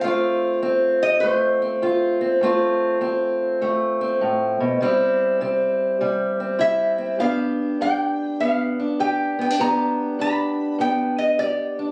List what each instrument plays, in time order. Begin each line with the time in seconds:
0.01 steel-string acoustic guitar F2 A3 C4 F4, resonator guitar played with a steel bar F5
0.62 steel-string acoustic guitar F2 C4
1.03 resonator guitar played with a steel bar D#5
1.20 steel-string acoustic guitar F2 A3, resonator guitar played with a steel bar C5
1.62 steel-string acoustic guitar C4
1.82 steel-string acoustic guitar F2 F4
2.21 steel-string acoustic guitar C4
2.41 steel-string acoustic guitar F2 A3 C4 F4
3.01 steel-string acoustic guitar F2 C4
3.61 steel-string acoustic guitar F2 A3
4.01 steel-string acoustic guitar C4
4.21 steel-string acoustic guitar A2
4.60 steel-string acoustic guitar B2
4.81 steel-string acoustic guitar C3 G3 C4 E4
5.41 steel-string acoustic guitar C3 C4
6.01 steel-string acoustic guitar C3 G3
6.40 steel-string acoustic guitar C4
6.59 steel-string acoustic guitar C3 E4, resonator guitar played with a steel bar E5
6.98 steel-string acoustic guitar C4
7.19 steel-string acoustic guitar G2 B3 D4 G4, resonator guitar played with a steel bar F5
7.81 steel-string acoustic guitar G2 D4, resonator guitar played with a steel bar G5
8.40 steel-string acoustic guitar G2 B3, resonator guitar played with a steel bar F5
8.80 steel-string acoustic guitar D4
8.99 steel-string acoustic guitar G2 G4, resonator guitar played with a steel bar G5
9.39 steel-string acoustic guitar B3, resonator guitar played with a steel bar G5
9.50 steel-string acoustic guitar D4
9.59 steel-string acoustic guitar G2 B3 D4 G4, resonator guitar played with a steel bar A#5
10.19 steel-string acoustic guitar G2 D4, resonator guitar played with a steel bar B5
10.78 steel-string acoustic guitar G2 B3, resonator guitar played with a steel bar G5
11.18 resonator guitar played with a steel bar D#5
11.39 steel-string acoustic guitar G2 G4, resonator guitar played with a steel bar D5
11.79 steel-string acoustic guitar D4